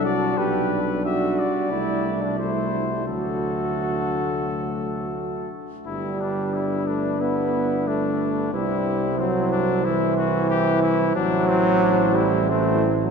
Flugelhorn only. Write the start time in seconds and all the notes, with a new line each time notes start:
0.04 F#4
0.37 G4
1.05 F#4
1.71 E4
2.23 D4
2.39 E4
3.06 F#4
5.86 B4
8.54 C5
11.16 C5
12.50 C5